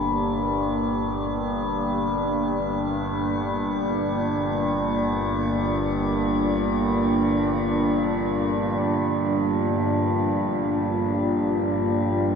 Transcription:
Already playing: synth drone G1 G2 D4, analog synth pad A#3 D4 G4 D5
0.86 analog synth pad G2
3.07 analog synth pad F4

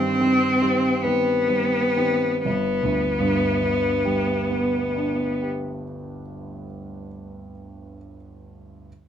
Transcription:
Already playing: grand piano G2 D#3 G3 C4, cello C4
0.20 grand piano D#3 G3 C4
0.61 grand piano D#3 G3 C4
1.03 grand piano D#3 G3 C4, cello B3
1.48 grand piano D#3 G3 C4
1.96 grand piano D#3 G3 C4
2.45 grand piano G1, cello B3
2.83 grand piano D2
3.20 grand piano G2
3.62 grand piano D3
4.05 grand piano G3
4.50 grand piano B3
4.96 grand piano D4
5.42 grand piano G4

